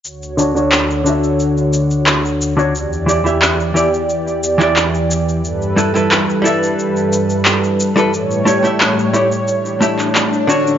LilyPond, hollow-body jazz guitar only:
\new Staff \with { instrumentName = "Hollow-body jazz guitar" } { \time 4/4 \key d \major \tempo 4 = 89 r8 <d d' fis' cis''>16 <d d' fis' cis''>8. <d d' fis' e''>2~ <d d' fis' e''>16 <d d' fis' cis''>16 | r8 <e e' g' d''>16 <e e' g' e''>8. <e e' g' d''>16 r4 <e e' g' d''>4~ <e e' g' d''>16 | r8 <g e' a' b'>16 <g e' a' b'>8. <g e' a' e''>2~ <g e' a' e''>16 <g e' a' b'>16 | r8 <a e' g' cis''>16 <a e' g' e''>8. <a e' g' cis''>16 r8. <a e' g' e''>4 <d d' fis' cis''>8 | }